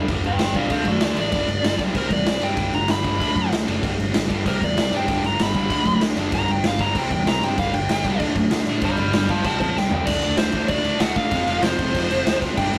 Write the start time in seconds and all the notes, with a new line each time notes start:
0.08 G1 G2 D3 G3, kick, crash
0.23 G1 G2 D3 B4 G5, crash
0.39 G1 G2 D3 B4 G5, snare, crash
0.54 C2 G2 D3 G3 D5 F5, kick, crash
0.70 D2 D3 A3 D4 A4 F5, kick, crash
0.85 F#2 D3 A3 F#4 D5, kick, crash
1.00 D2 D3 A3 F#4 D5, snare, crash
1.16 A1 D3 A3 D4 D5, crash
1.32 G1 G2 D3 G3, kick, crash
1.47 G1 G2 D3, crash
1.62 G1 G2 D3, snare, crash
1.78 B1 G2 D3 G3, kick, crash
1.93 C2 C3 G3 C4 A#4, kick, crash
2.09 E2 C3 G3 D5, kick, crash
2.25 C2 C3 G3, snare, crash
2.40 G2 C3 G3 C4 G5, crash
2.56 G1 G2 D3 G3, kick, crash
2.72 G1 G2 D3 A#5, crash
2.87 G1 G2 D3, snare, crash
2.91 B5
3.02 G1 G2 D3 G3, kick, crash
3.18 D2 D3 A3 D4, kick, crash
3.35 F#2 D3 A3, kick, crash
3.50 D2 D3 A3, snare, crash
3.66 F#1 D3 A3 D4, crash
3.81 G1 G2 D3 G3, kick, crash
3.98 G1 G2 D3, crash
4.12 G1 G2 D3, snare, crash
4.28 G1 G2 D3 G3, kick, crash
4.45 C2 C3 G3 C4 A#4, kick, crash
4.61 E2 C3 G3 D5, kick, crash
4.77 C2 C3 G3, snare, crash
4.92 G2 C3 G3 C4, crash
4.97 G5
5.08 G1 G2 D3 G3, kick, crash
5.23 G1 G2 D3 A#5, crash
5.39 G1 G2 D3 G3, snare, crash
5.43 B5
5.54 G1 G2 D3 G3, kick, crash
5.70 D2 D3 A3 D4, kick, crash
5.85 F#2 D3 A3, kick, crash
6.00 D2 D3 A3 D4, snare, crash
6.15 F#1 D3 A3 D4, crash
6.32 G1 G2 D3 G3 A#5, kick, crash
6.48 G1 G2 D3 G5, crash
6.64 G1 G2 D3 G3 F5, snare, crash
6.79 G1 G2 D3 G3 A#5, kick, crash
6.94 C2 C3 G3 C4 G5, kick, crash
7.10 E2 C3 G3 G5, kick, crash
7.25 C2 C3 G3 C4 A#5, snare, crash
7.41 G2 C3 G3 C4 G5, crash
7.57 G1 G2 D3 G3 F5, kick, crash
7.73 G1 G2 D3 G5, crash
7.89 G1 G2 D3 G3, snare, crash
8.04 C2 G2 D3 G3, kick, crash
8.19 D2 D3 A3 D4, kick, crash
8.35 F#2 D3 A3, kick, crash
8.50 D2 D3 A3 D4, snare, crash
8.66 A2 D3 A3, crash
8.70 D4
8.81 G1 G2 D3 G3 D5 B5, kick, crash
8.97 G1 G2 D3 D5 B5, crash
9.13 G1 G2 D3 G3 D5 B5, snare, crash
9.29 G1 G2 D3 G3 F5 A5, kick, crash
9.44 C2 C3 G3 C4 C5 A5, kick, crash
9.60 E2 C3 G3 C5 A5, kick, crash
9.75 C2 C3 G3 C4 G5, snare
9.91 C#2 C3 G3 C4, floor tom
10.06 D2 D3 A3 D4 D5, kick, crash
10.22 D2 D3 A3 D4, crash
10.37 D2 D3 A3 D4 C5, snare, crash
10.52 D2 D4, kick, crash
10.56 D3 A3
10.68 D2 D3 A3 D4 D5, kick, crash
10.84 D3 A3 D4, crash
11.00 D2 D3 A3 D4 F#5, snare, crash
11.16 D2 D3 A3 D4 F5, kick, crash
11.31 F1 F2 C3 F3, kick, crash
11.47 F1 F2 C3 F3, crash
11.62 F1 F2 C3 F3 C5, snare, crash
11.79 F1 F2 C3 F3, kick, crash
11.94 F1 F2 C3 F3, kick, crash
12.11 F1 F2 C3 F3, crash
12.27 D2 F2 C3 F3, snare, crash
12.41 F2 C3 F3, kick, crash
12.56 G1 G2 D3 G3 G5, kick, crash
12.72 G1 G2 D3 G3, crash